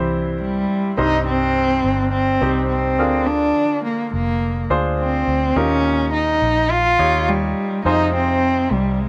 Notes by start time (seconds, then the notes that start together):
Already playing: C2 G2 E3 C4 E4 G4 C5
0.41 G3
0.98 C2 G2 C4 D#4 G4 C5
1.27 C4
1.84 G1
2.12 C4
2.41 C2 C4 D#4 G4 C5
2.70 C4
2.99 D2 D3 D4 F4 G#4 A#4
3.26 D4
3.84 A#3
4.13 F1 A#3
4.70 D2 D4 F4 G#4 C5
4.99 C4
5.28 D2
5.56 D#2 A#2 C#4 D#4 F4 G4 A#4
6.13 D#4
6.42 A#1
6.70 F4
6.99 D#2 D#4 F4 G4 C#5
7.28 G3
7.85 F2 C3 D#4 F4 G#4 C5
8.14 C4
8.71 C2 G3
9.00 G#3